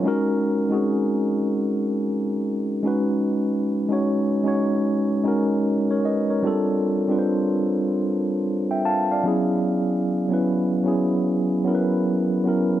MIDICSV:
0, 0, Header, 1, 2, 480
1, 0, Start_track
1, 0, Key_signature, 5, "minor"
1, 0, Tempo, 800000
1, 25, Time_signature, 4, 2, 24, 8
1, 7680, End_track
2, 0, Start_track
2, 0, Title_t, "Tine electric piano"
2, 0, Program_c, 0, 4
2, 0, Control_c, 0, 64, 127
2, 20, Note_on_c, 0, 56, 94
2, 27, Note_on_c, 0, 61, 79
2, 34, Control_c, 0, 64, 0
2, 34, Note_on_c, 0, 63, 88
2, 41, Note_on_c, 0, 66, 92
2, 47, Note_on_c, 0, 70, 109
2, 127, Control_c, 0, 64, 127
2, 340, Note_off_c, 0, 56, 0
2, 344, Note_off_c, 0, 61, 0
2, 348, Note_off_c, 0, 63, 0
2, 351, Note_off_c, 0, 66, 0
2, 354, Note_off_c, 0, 70, 0
2, 415, Note_on_c, 0, 56, 71
2, 422, Note_on_c, 0, 60, 57
2, 426, Note_on_c, 0, 63, 74
2, 433, Note_on_c, 0, 66, 71
2, 441, Note_on_c, 0, 68, 87
2, 448, Note_off_c, 0, 60, 0
2, 461, Note_on_c, 0, 61, 65
2, 1198, Note_off_c, 0, 56, 0
2, 1203, Note_off_c, 0, 63, 0
2, 1207, Note_off_c, 0, 66, 0
2, 1210, Note_off_c, 0, 68, 0
2, 1220, Note_off_c, 0, 61, 0
2, 1697, Note_on_c, 0, 56, 81
2, 1704, Note_on_c, 0, 61, 69
2, 1711, Note_on_c, 0, 63, 72
2, 1714, Control_c, 0, 64, 0
2, 1718, Note_on_c, 0, 66, 70
2, 1725, Note_on_c, 0, 71, 88
2, 1834, Control_c, 0, 64, 127
2, 2210, Note_off_c, 0, 56, 0
2, 2213, Note_off_c, 0, 61, 0
2, 2217, Note_off_c, 0, 63, 0
2, 2220, Note_off_c, 0, 66, 0
2, 2223, Note_off_c, 0, 71, 0
2, 2331, Note_on_c, 0, 56, 78
2, 2338, Note_on_c, 0, 61, 69
2, 2345, Note_on_c, 0, 63, 73
2, 2351, Note_on_c, 0, 66, 72
2, 2357, Note_on_c, 0, 73, 79
2, 2619, Note_off_c, 0, 56, 0
2, 2623, Note_off_c, 0, 61, 0
2, 2626, Note_off_c, 0, 63, 0
2, 2629, Note_off_c, 0, 66, 0
2, 2632, Note_off_c, 0, 73, 0
2, 2661, Note_on_c, 0, 56, 78
2, 2666, Note_on_c, 0, 61, 67
2, 2674, Note_on_c, 0, 63, 69
2, 2680, Note_on_c, 0, 66, 69
2, 2686, Note_on_c, 0, 73, 92
2, 3086, Note_off_c, 0, 56, 0
2, 3089, Note_off_c, 0, 61, 0
2, 3092, Note_off_c, 0, 63, 0
2, 3096, Note_off_c, 0, 66, 0
2, 3098, Note_off_c, 0, 73, 0
2, 3141, Note_on_c, 0, 56, 86
2, 3148, Note_on_c, 0, 61, 79
2, 3153, Note_on_c, 0, 63, 78
2, 3161, Note_on_c, 0, 66, 76
2, 3167, Note_on_c, 0, 70, 87
2, 3396, Note_off_c, 0, 70, 0
2, 3545, Note_on_c, 0, 73, 66
2, 3550, Note_on_c, 0, 70, 56
2, 3566, Note_off_c, 0, 56, 0
2, 3569, Note_off_c, 0, 61, 0
2, 3572, Note_off_c, 0, 63, 0
2, 3576, Note_off_c, 0, 66, 0
2, 3625, Note_off_c, 0, 73, 0
2, 3627, Note_off_c, 0, 70, 0
2, 3631, Note_on_c, 0, 75, 70
2, 3635, Note_on_c, 0, 71, 62
2, 3773, Note_off_c, 0, 75, 0
2, 3775, Note_off_c, 0, 71, 0
2, 3780, Note_on_c, 0, 73, 59
2, 3783, Note_on_c, 0, 70, 52
2, 3856, Note_on_c, 0, 55, 108
2, 3863, Note_on_c, 0, 60, 85
2, 3868, Note_on_c, 0, 62, 86
2, 3874, Control_c, 0, 64, 0
2, 3876, Note_on_c, 0, 65, 86
2, 3882, Note_on_c, 0, 69, 107
2, 3986, Control_c, 0, 64, 127
2, 4007, Note_off_c, 0, 73, 0
2, 4008, Note_off_c, 0, 70, 0
2, 4178, Note_off_c, 0, 55, 0
2, 4182, Note_off_c, 0, 60, 0
2, 4185, Note_off_c, 0, 62, 0
2, 4188, Note_off_c, 0, 65, 0
2, 4192, Note_off_c, 0, 69, 0
2, 4246, Note_on_c, 0, 55, 68
2, 4252, Note_on_c, 0, 60, 72
2, 4258, Note_on_c, 0, 62, 73
2, 4266, Note_on_c, 0, 65, 70
2, 4271, Note_on_c, 0, 71, 70
2, 4293, Note_off_c, 0, 71, 0
2, 4311, Note_on_c, 0, 72, 83
2, 5033, Note_off_c, 0, 55, 0
2, 5036, Note_off_c, 0, 60, 0
2, 5039, Note_off_c, 0, 62, 0
2, 5043, Note_off_c, 0, 65, 0
2, 5066, Note_off_c, 0, 72, 0
2, 5225, Note_on_c, 0, 79, 62
2, 5228, Note_on_c, 0, 76, 56
2, 5305, Note_off_c, 0, 79, 0
2, 5306, Note_off_c, 0, 76, 0
2, 5312, Note_on_c, 0, 81, 82
2, 5315, Note_on_c, 0, 77, 64
2, 5453, Note_off_c, 0, 81, 0
2, 5455, Note_off_c, 0, 77, 0
2, 5469, Note_on_c, 0, 77, 61
2, 5472, Note_on_c, 0, 74, 59
2, 5541, Note_on_c, 0, 54, 93
2, 5548, Note_on_c, 0, 59, 72
2, 5553, Control_c, 0, 64, 0
2, 5556, Note_on_c, 0, 61, 80
2, 5562, Note_on_c, 0, 64, 78
2, 5566, Note_on_c, 0, 68, 92
2, 5671, Control_c, 0, 64, 127
2, 5692, Note_off_c, 0, 77, 0
2, 5693, Note_off_c, 0, 74, 0
2, 6051, Note_off_c, 0, 54, 0
2, 6055, Note_off_c, 0, 59, 0
2, 6059, Note_off_c, 0, 61, 0
2, 6062, Note_off_c, 0, 64, 0
2, 6064, Note_off_c, 0, 68, 0
2, 6173, Note_on_c, 0, 54, 77
2, 6181, Note_on_c, 0, 59, 65
2, 6190, Note_on_c, 0, 61, 68
2, 6195, Note_on_c, 0, 64, 66
2, 6201, Note_on_c, 0, 71, 83
2, 6460, Note_off_c, 0, 54, 0
2, 6464, Note_off_c, 0, 59, 0
2, 6468, Note_off_c, 0, 61, 0
2, 6471, Note_off_c, 0, 64, 0
2, 6474, Note_off_c, 0, 71, 0
2, 6502, Note_on_c, 0, 54, 79
2, 6508, Note_on_c, 0, 59, 66
2, 6514, Note_on_c, 0, 61, 75
2, 6520, Note_on_c, 0, 64, 69
2, 6528, Note_on_c, 0, 68, 78
2, 6926, Note_off_c, 0, 54, 0
2, 6929, Note_off_c, 0, 59, 0
2, 6932, Note_off_c, 0, 61, 0
2, 6936, Note_off_c, 0, 64, 0
2, 6939, Note_off_c, 0, 68, 0
2, 6983, Note_on_c, 0, 54, 80
2, 6988, Note_on_c, 0, 59, 80
2, 6995, Note_on_c, 0, 61, 65
2, 7002, Note_on_c, 0, 64, 74
2, 7007, Note_on_c, 0, 70, 70
2, 7046, Note_off_c, 0, 70, 0
2, 7047, Note_on_c, 0, 71, 85
2, 7407, Note_off_c, 0, 54, 0
2, 7410, Note_off_c, 0, 59, 0
2, 7413, Note_off_c, 0, 61, 0
2, 7416, Note_off_c, 0, 64, 0
2, 7439, Note_off_c, 0, 71, 0
2, 7464, Note_on_c, 0, 54, 74
2, 7471, Note_on_c, 0, 59, 66
2, 7478, Note_on_c, 0, 61, 66
2, 7483, Note_on_c, 0, 64, 70
2, 7491, Note_on_c, 0, 70, 76
2, 7676, Note_off_c, 0, 54, 0
2, 7680, Note_off_c, 0, 59, 0
2, 7680, Note_off_c, 0, 61, 0
2, 7680, Note_off_c, 0, 64, 0
2, 7680, Note_off_c, 0, 70, 0
2, 7680, End_track
0, 0, End_of_file